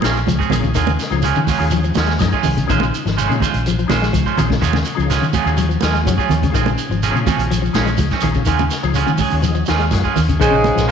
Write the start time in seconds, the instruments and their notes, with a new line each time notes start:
Already playing: clean electric guitar F3
0.01 fingered electric bass A#1, tonewheel organ D#3 G#3 C#4 F4, clean electric guitar F3 C4 C#4, snare, closed hi-hat, high conga, shekere
0.16 muted clean electric guitar stroke, shekere
0.27 fingered electric bass C#2, clean electric guitar F3, kick, closed hi-hat, high conga, shekere
0.39 clean electric guitar C4 C#4 G#4, kick, shekere
0.50 fingered electric bass A#1, tonewheel organ D#3 G#3 C#4 F4, clean electric guitar D#3, closed hi-hat, high conga, low conga, shekere
0.63 clean electric guitar C#3, kick, shekere
0.75 fingered electric bass D#2, clean electric guitar D#3 F#3 F4 G#4, muted clean electric guitar stroke, kick, closed hi-hat, shekere
0.87 clean electric guitar C#3, high conga, shekere
0.99 snare, closed hi-hat, shekere
1.10 fingered electric bass C#2, tonewheel organ D#3 G#3 C#4 F4, clean electric guitar F3, shekere
1.22 clean electric guitar F#3 C#4 F4 G#4, closed hi-hat, shekere
1.35 clean electric guitar C#3, fingered electric bass D#3, shekere
1.47 clean electric guitar F#3 C#4 F4 G#4, kick, open hi-hat, high conga, low conga, shekere
1.58 fingered electric bass D#2, tonewheel organ D#3 G#3 C#4 F4, shekere
1.71 clean electric guitar F3, closed hi-hat, shekere
1.84 clean electric guitar F3, shekere
1.94 fingered electric bass D#2, clean electric guitar F#3 C#4 F4 G#4, snare, closed hi-hat, high conga, shekere
2.06 clean electric guitar G#3, snare, shekere
2.19 fingered electric bass F#2, tonewheel organ D#3 G#3 C#4 D#4, clean electric guitar F3, kick, snare, closed hi-hat, high conga, shekere
2.32 clean electric guitar C#4 F4 G#4, kick, shekere
2.43 fingered electric bass C2, clean electric guitar D#3, open hi-hat, low conga, shekere
2.57 clean electric guitar C#3, kick, closed hi-hat, shekere
2.67 fingered electric bass A#1, tonewheel organ D#3 G#3 C#4 F4, clean electric guitar D#3 G#3 C#4 F4 C5, kick, closed hi-hat, low conga, shekere
2.80 clean electric guitar C#3, high conga, shekere
2.94 closed hi-hat, shekere
3.05 fingered electric bass G#1, clean electric guitar F3, snare, shekere
3.17 clean electric guitar G#3 C#4 F4 C5, closed hi-hat, shekere
3.27 fingered electric bass A#2, clean electric guitar C#3, tonewheel organ D#3 G#3 C#4 F4, shekere
3.40 clean electric guitar G#3 F4 C5, muted clean electric guitar stroke, kick, closed hi-hat, high conga, low conga, shekere
3.54 fingered electric bass A#1, closed hi-hat, shekere
3.66 clean electric guitar F3, closed hi-hat, shekere
3.79 clean electric guitar F3, shekere
3.87 fingered electric bass A#1, tonewheel organ D#3 G#3 C#4 F4, clean electric guitar G#3 C#4 F4 C5, snare, closed hi-hat, high conga, low conga, shekere
4.02 clean electric guitar G#3, snare, shekere
4.13 fingered electric bass C#2, clean electric guitar F3, kick, closed hi-hat, high conga, shekere
4.26 clean electric guitar C#4 F4 C5, kick, shekere
4.37 fingered electric bass A#1, tonewheel organ D#3 G#3 C#4 F4, clean electric guitar D#3, closed hi-hat, low conga, shekere
4.50 clean electric guitar C#3, kick, snare, high conga, shekere
4.61 fingered electric bass D#2, clean electric guitar F#3 C#4 F4 G#4, muted clean electric guitar stroke, kick, closed hi-hat, shekere
4.73 clean electric guitar C#3, snare, high conga, shekere
4.85 closed hi-hat, shekere
4.95 fingered electric bass C#2, tonewheel organ D#3 G#3 C#4 F4, clean electric guitar F3
4.99 shekere
5.10 clean electric guitar F#3 C#4 F4 G#4, snare, closed hi-hat, shekere
5.21 clean electric guitar C#3, fingered electric bass D#3, shekere
5.33 clean electric guitar F#3 C#4 F4 G#4, kick, closed hi-hat, high conga, low conga, shekere
5.44 fingered electric bass D#2, tonewheel organ D#3 G#3 C#4 F4, shekere
5.57 clean electric guitar F#3, closed hi-hat, shekere
5.69 clean electric guitar F3, shekere
5.81 fingered electric bass D#2, clean electric guitar F#3 C#4 F4 G#4, tonewheel organ G#5, snare, closed hi-hat, high conga, shekere
5.94 clean electric guitar G#3, shekere
6.03 fingered electric bass F#2, tonewheel organ D#3 G#3 C#4 F#4 C#5, clean electric guitar F3, kick, closed hi-hat, high conga
6.07 shekere
6.18 clean electric guitar C#4 F4 G#4, kick, shekere
6.29 fingered electric bass D#2, clean electric guitar D#3, closed hi-hat, low conga, shekere
6.42 clean electric guitar C#3, kick, closed hi-hat, high conga, shekere
6.50 fingered electric bass A#1, tonewheel organ D#3 G#3 C#4 F4, clean electric guitar F3
6.55 clean electric guitar D#3 C4 G#4, muted clean electric guitar stroke, kick, closed hi-hat, shekere
6.66 clean electric guitar C#3, high conga, shekere
6.78 closed hi-hat, shekere
6.89 fingered electric bass G#1, clean electric guitar F3, shekere
7.03 clean electric guitar F3 C4 C#4 G#4, closed hi-hat, shekere
7.10 fingered electric bass A#2, tonewheel organ D#3 G#3 C#4 F4
7.15 clean electric guitar C#3, shekere
7.27 clean electric guitar F3 C4 C#4 G#4, kick, closed hi-hat, high conga, low conga, shekere
7.37 fingered electric bass A#1, closed hi-hat, shekere
7.51 clean electric guitar F3, closed hi-hat, shekere
7.62 clean electric guitar F3, shekere
7.73 fingered electric bass A#1, tonewheel organ D#3 G#3 C#4 F4, clean electric guitar F3 C4 C#4 G#4, snare, closed hi-hat, high conga, low conga, shekere
7.85 clean electric guitar G#3, shekere
7.97 fingered electric bass C#2, clean electric guitar F3, kick, closed hi-hat, high conga, shekere
8.11 clean electric guitar C4 C#4, muted clean electric guitar stroke, kick, snare, shekere
8.21 fingered electric bass A#1, tonewheel organ D#3 G#3 C#4 F4, clean electric guitar D#3, closed hi-hat, low conga, shekere
8.34 clean electric guitar C#3, kick, shekere
8.45 fingered electric bass D#2, clean electric guitar D#3 F#3 C#4 F4 G#4, kick, closed hi-hat, shekere
8.59 clean electric guitar C#3, high conga, shekere
8.71 snare, closed hi-hat, shekere
8.83 fingered electric bass C#2, tonewheel organ D#3 G#3 C#4 F4, clean electric guitar F3, shekere
8.94 clean electric guitar F#3 C#4 F4 G#4, closed hi-hat, shekere
9.06 clean electric guitar C#3, fingered electric bass D#3, high conga, shekere
9.18 clean electric guitar F#3 G#4, tonewheel organ C#5, kick, open hi-hat, high conga, low conga, shekere
9.31 fingered electric bass D#2, tonewheel organ D#3 G#3 C#4 F4, shekere
9.42 clean electric guitar F3, tonewheel organ D#5, closed hi-hat, shekere
9.55 clean electric guitar F3, shekere
9.66 fingered electric bass D#2, clean electric guitar F#3 C#4 F4 G#4, tonewheel organ F5, snare, closed hi-hat, high conga, shekere
9.79 clean electric guitar G#3, shekere
9.91 fingered electric bass F#2, tonewheel organ D#3 G#3 C#4 F4 F#5, muted clean electric guitar stroke, kick, snare, closed hi-hat, high conga, shekere
10.04 clean electric guitar C#4 F4 G#4, kick, shekere
10.16 fingered electric bass D#2, clean electric guitar D#3, tonewheel organ G#5, open hi-hat, low conga, shekere
10.29 clean electric guitar C#3, kick, closed hi-hat, shekere
10.40 fingered electric bass A#1, baritone saxophone G#2, trombone C#3, clean electric guitar D#3 G#3 C#4 F4 C5, horn section G#3 G#4, kick, closed hi-hat, shekere
10.51 clean electric guitar C#3
10.64 closed hi-hat, high conga, shekere
10.75 fingered electric bass A#1, clean electric guitar F3, kick, snare, closed hi-hat, shekere
10.88 clean electric guitar G#3